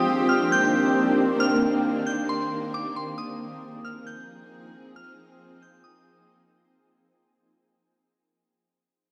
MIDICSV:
0, 0, Header, 1, 3, 480
1, 0, Start_track
1, 0, Tempo, 444444
1, 1515, Time_signature, 4, 2, 24, 8
1, 9849, End_track
2, 0, Start_track
2, 0, Title_t, "Synth bell"
2, 0, Program_c, 0, 98
2, 0, Note_on_c, 0, 87, 111
2, 273, Note_off_c, 0, 87, 0
2, 312, Note_on_c, 0, 89, 66
2, 542, Note_off_c, 0, 89, 0
2, 563, Note_on_c, 0, 91, 74
2, 1476, Note_off_c, 0, 91, 0
2, 1512, Note_on_c, 0, 89, 92
2, 2191, Note_off_c, 0, 89, 0
2, 2230, Note_on_c, 0, 91, 77
2, 2461, Note_off_c, 0, 91, 0
2, 2474, Note_on_c, 0, 84, 80
2, 2926, Note_off_c, 0, 84, 0
2, 2960, Note_on_c, 0, 86, 83
2, 3186, Note_off_c, 0, 86, 0
2, 3201, Note_on_c, 0, 84, 84
2, 3426, Note_off_c, 0, 84, 0
2, 3433, Note_on_c, 0, 87, 97
2, 4111, Note_off_c, 0, 87, 0
2, 4153, Note_on_c, 0, 89, 78
2, 4382, Note_off_c, 0, 89, 0
2, 4391, Note_on_c, 0, 91, 87
2, 5310, Note_off_c, 0, 91, 0
2, 5358, Note_on_c, 0, 89, 103
2, 6034, Note_off_c, 0, 89, 0
2, 6075, Note_on_c, 0, 91, 72
2, 6303, Note_off_c, 0, 91, 0
2, 6306, Note_on_c, 0, 87, 74
2, 6761, Note_off_c, 0, 87, 0
2, 9849, End_track
3, 0, Start_track
3, 0, Title_t, "Ambient pad"
3, 0, Program_c, 1, 92
3, 0, Note_on_c, 1, 51, 83
3, 0, Note_on_c, 1, 58, 73
3, 0, Note_on_c, 1, 60, 74
3, 0, Note_on_c, 1, 62, 76
3, 0, Note_on_c, 1, 67, 90
3, 3395, Note_off_c, 1, 60, 0
3, 3395, Note_off_c, 1, 67, 0
3, 3397, Note_off_c, 1, 51, 0
3, 3397, Note_off_c, 1, 62, 0
3, 3437, Note_on_c, 1, 53, 80
3, 3437, Note_on_c, 1, 60, 77
3, 3437, Note_on_c, 1, 68, 87
3, 3438, Note_on_c, 1, 63, 75
3, 7232, Note_off_c, 1, 58, 0
3, 7238, Note_off_c, 1, 53, 0
3, 7238, Note_off_c, 1, 60, 0
3, 7238, Note_off_c, 1, 63, 0
3, 7238, Note_off_c, 1, 68, 0
3, 9849, End_track
0, 0, End_of_file